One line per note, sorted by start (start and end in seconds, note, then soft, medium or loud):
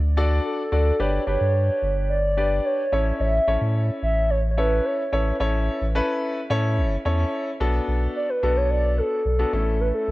0.00 0.40 D2 medium
0.17 0.61 D4 medium
0.17 0.61 F#4 medium
0.17 0.61 A4 medium
0.17 0.61 D5 loud
0.45 1.01 A4 medium
0.72 0.92 D2 loud
0.72 0.94 D4 medium
0.72 0.94 F#4 medium
0.72 0.94 A4 medium
0.72 0.94 D5 medium
1.00 1.19 G1 medium
1.00 1.22 D4 medium
1.00 1.22 G4 medium
1.00 1.22 B4 medium
1.00 2.09 C#5 loud
1.00 1.22 D5 medium
1.27 1.37 G1 medium
1.27 2.15 D4 medium
1.27 2.15 G4 medium
1.27 2.15 B4 medium
1.41 1.70 G2 medium
1.82 2.60 G1 medium
2.10 2.67 D5 loud
2.37 2.81 D4 medium
2.37 2.81 G4 medium
2.37 2.81 B4 medium
2.37 2.81 D5 medium
2.65 3.22 C#5 loud
2.92 3.12 A1 medium
2.92 3.36 C#4 medium
2.92 3.36 E4 medium
2.92 3.37 A4 medium
2.92 3.37 C#5 medium
3.20 3.39 A1 loud
3.20 3.75 E5 loud
3.47 3.57 A1 medium
3.47 4.35 C#4 medium
3.47 4.35 E4 medium
3.47 4.35 A4 medium
3.47 4.35 C#5 medium
3.61 3.90 A2 medium
4.03 4.80 A1 medium
4.03 4.32 E5 loud
4.30 4.50 C#5 loud
4.51 4.59 C#5 medium
4.57 5.01 C#4 medium
4.57 5.01 E4 medium
4.57 5.01 A4 medium
4.57 4.87 B4 medium
4.57 5.01 C#5 medium
4.85 5.27 C#5 medium
5.12 5.32 A1 medium
5.12 5.34 C#4 medium
5.12 5.34 E4 medium
5.12 5.35 A4 medium
5.12 5.35 C#5 medium
5.40 5.69 A1 loud
5.40 5.84 C#4 medium
5.40 5.84 E4 medium
5.40 5.84 A4 medium
5.40 5.84 C#5 loud
5.81 6.01 A1 medium
5.95 6.39 C#4 loud
5.95 6.39 E4 medium
5.95 6.39 A4 medium
5.95 6.39 B4 loud
6.50 6.79 A2 loud
6.50 6.94 C#4 medium
6.50 6.94 E4 medium
6.50 6.94 A4 medium
6.50 6.94 C#5 loud
6.78 6.97 F#1 loud
7.05 7.25 E2 medium
7.05 7.49 C#4 loud
7.05 7.49 E4 medium
7.05 7.49 A4 medium
7.05 7.49 C#5 loud
7.60 7.80 B1 loud
7.60 8.26 B3 medium
7.60 8.26 D4 medium
7.60 8.26 F#4 medium
7.60 8.26 A4 loud
7.88 8.07 B1 medium
8.16 8.31 D5 loud
8.29 8.58 B4 loud
8.43 9.01 B1 loud
8.43 9.19 B3 medium
8.43 9.19 D4 medium
8.43 9.19 F#4 medium
8.43 9.19 A4 medium
8.57 8.70 C#5 medium
8.71 8.99 D5 loud
8.98 9.82 A4 loud
9.25 9.45 B1 loud
9.39 9.50 B3 medium
9.39 9.50 D4 medium
9.39 9.50 F#4 medium
9.39 9.50 A4 medium
9.53 9.92 A1 loud
9.53 10.11 A3 medium
9.53 10.11 C#4 medium
9.53 10.11 E4 medium
9.53 10.11 A4 medium
9.81 9.94 B4 loud
9.94 10.11 A4 medium
10.08 10.11 A1 medium